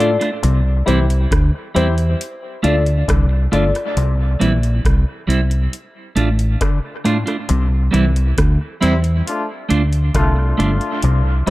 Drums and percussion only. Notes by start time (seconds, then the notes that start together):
0.00 closed hi-hat
0.21 cross-stick, closed hi-hat
0.43 closed hi-hat
0.88 closed hi-hat
1.10 closed hi-hat
1.31 kick, cross-stick, closed hi-hat
1.76 closed hi-hat
1.98 closed hi-hat
2.21 closed hi-hat
2.64 closed hi-hat
2.86 closed hi-hat
3.08 kick, cross-stick, closed hi-hat
3.53 closed hi-hat
3.75 cross-stick, closed hi-hat
3.97 closed hi-hat
4.41 closed hi-hat
4.63 closed hi-hat
4.85 kick, cross-stick, closed hi-hat
5.30 closed hi-hat
5.51 closed hi-hat
5.73 closed hi-hat
6.17 closed hi-hat
6.39 closed hi-hat
6.61 kick, cross-stick, closed hi-hat
7.05 closed hi-hat
7.27 cross-stick, closed hi-hat
7.49 closed hi-hat
7.94 closed hi-hat
8.16 closed hi-hat
8.38 kick, cross-stick, closed hi-hat
8.82 closed hi-hat
9.04 closed hi-hat
9.27 closed hi-hat
9.70 closed hi-hat
9.93 closed hi-hat
10.14 kick, cross-stick, closed hi-hat
10.60 closed hi-hat
10.81 closed hi-hat
11.02 closed hi-hat